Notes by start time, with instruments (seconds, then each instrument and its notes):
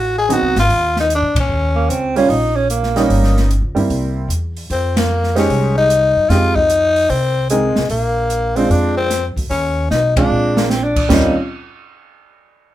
Already playing: upright bass A1, tenor saxophone F#4
0.18 tenor saxophone G#4
0.29 upright piano F#3 B3 C4 D#4, tenor saxophone F#4, closed hi-hat
0.42 upright bass C2
0.56 upright bass G#1, snare, open hi-hat
0.60 tenor saxophone F4
0.70 upright bass D#2, kick, open hi-hat
0.96 tenor saxophone D#4, snare
1.10 closed hi-hat
1.15 tenor saxophone D4
1.22 upright bass A2
1.35 upright bass A#2, kick, ride
1.40 tenor saxophone C#4
1.48 upright bass D#2
1.75 alto saxophone A#3
1.89 upright bass C#2, alto saxophone C4, closed hi-hat
2.16 upright piano G3 A#3 C#4 F4, alto saxophone C#4, open hi-hat
2.29 upright bass A#1, alto saxophone D#4, kick, open hi-hat
2.56 alto saxophone C#4
2.70 alto saxophone A#3, closed hi-hat
2.83 snare
2.96 upright piano G3 A#3 C#4 D#4, snare, open hi-hat
3.10 upright bass G1, kick, open hi-hat
3.23 snare
3.37 snare
3.51 closed hi-hat
3.62 upright bass C#2
3.75 upright bass G2, upright piano G3 A#3 C4 E4, open hi-hat
3.90 upright bass C2, kick, open hi-hat
4.28 upright bass E2, closed hi-hat
4.57 open hi-hat
4.70 upright bass F2, tenor saxophone C4, kick, open hi-hat
4.97 tenor saxophone A#3, snare, ride
5.23 snare
5.35 upright piano G#3 D#4 G4 C5, tenor saxophone C#4, snare, open hi-hat
5.49 upright bass C2, kick, open hi-hat
5.78 tenor saxophone D#4
5.90 closed hi-hat
6.16 upright bass F#2
6.29 upright bass F2, upright piano G#3 C4 D#4 G4, tenor saxophone F4, kick, snare, open hi-hat
6.55 tenor saxophone D#4, kick
6.70 closed hi-hat
6.96 open hi-hat
7.09 upright bass C2, tenor saxophone C4, kick, open hi-hat
7.50 tenor saxophone G#3, upright piano G#3 C4 D#4 A#4, closed hi-hat
7.76 upright bass C2, snare
7.89 upright bass A#1, tenor saxophone A#3, kick, open hi-hat
8.30 closed hi-hat
8.56 upright piano G#3 C4 D4 F4, tenor saxophone C4, open hi-hat
8.70 upright bass F2, tenor saxophone D4, kick, open hi-hat
8.97 tenor saxophone C4
9.10 snare, closed hi-hat
9.36 upright bass D2, kick, open hi-hat
9.50 upright bass D#2, tenor saxophone C#4, kick, open hi-hat
9.90 upright bass B1, tenor saxophone D#4, snare
10.16 upright piano G#3 C4 D4 F4, tenor saxophone D4, kick, ride
10.30 upright bass A#1
10.57 alto saxophone A#3, snare
10.70 alto saxophone C4, snare
10.84 alto saxophone D4
10.96 kick, crash
11.09 upright bass D#2, upright piano G3 C4 C#4 F4, alto saxophone A#3, kick, snare, splash
11.14 tenor saxophone D#4